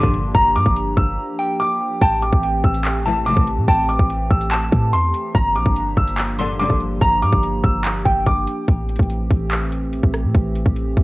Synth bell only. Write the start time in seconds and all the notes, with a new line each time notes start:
Already playing: C6
0.35 A#5
1.39 G5
2.01 G5
3.06 A5
3.68 G5
4.51 A5
5.35 A#5
6.39 C6
7.01 A#5
8.05 G5